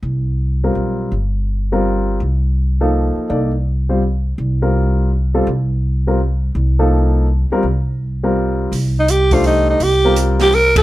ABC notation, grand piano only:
X:1
M:3/4
L:1/8
Q:"Swing" 1/4=166
K:Cdor
V:1 name="Grand piano"
z3 [G,CFB]3 | z3 [G,CFB]3 | z3 [F,B,EA]3 | [B,EAd] z2 [G,CFc] z2 |
z [G,CFB]3 z [G,CFA] | z3 [G,CFB] z2 | z [F,B,EA]3 z [G,CFB] | z3 [G,CFB]3 |
z3 [A,DGc]3 | z [G,CFB]3 z2 |]